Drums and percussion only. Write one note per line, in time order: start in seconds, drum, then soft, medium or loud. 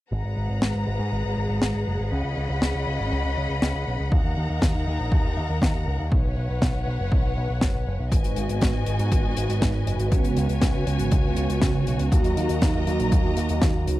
0.62 snare loud
1.62 snare loud
2.62 snare loud
3.62 snare loud
4.12 kick loud
4.62 kick loud
4.62 snare loud
5.12 kick loud
5.62 kick loud
5.62 snare loud
6.12 kick loud
6.62 kick loud
6.62 snare loud
7.12 kick loud
7.61 kick loud
7.61 snare loud
8.12 kick loud
8.12 closed hi-hat medium
8.24 closed hi-hat medium
8.36 closed hi-hat medium
8.49 closed hi-hat medium
8.61 kick loud
8.61 snare loud
8.61 closed hi-hat medium
8.86 closed hi-hat medium
8.99 closed hi-hat medium
9.12 kick loud
9.12 closed hi-hat medium
9.37 closed hi-hat medium
9.50 closed hi-hat medium
9.62 kick loud
9.62 snare loud
9.62 closed hi-hat medium
9.87 closed hi-hat medium
9.99 closed hi-hat medium
10.12 kick loud
10.12 closed hi-hat medium
10.24 closed hi-hat medium
10.37 closed hi-hat medium
10.49 closed hi-hat medium
10.62 kick loud
10.62 snare loud
10.62 closed hi-hat medium
10.87 closed hi-hat medium
10.99 closed hi-hat medium
11.12 kick loud
11.12 closed hi-hat medium
11.37 closed hi-hat medium
11.50 closed hi-hat medium
11.62 kick loud
11.62 snare loud
11.62 closed hi-hat medium
11.87 closed hi-hat medium
11.99 closed hi-hat medium
12.12 kick loud
12.12 closed hi-hat medium
12.24 closed hi-hat soft
12.37 closed hi-hat medium
12.49 closed hi-hat medium
12.62 kick loud
12.62 snare loud
12.62 closed hi-hat medium
12.87 closed hi-hat medium
13.00 closed hi-hat medium
13.12 kick loud
13.12 closed hi-hat medium
13.37 closed hi-hat medium
13.49 closed hi-hat medium
13.62 kick loud
13.62 snare loud
13.62 closed hi-hat medium
13.88 closed hi-hat medium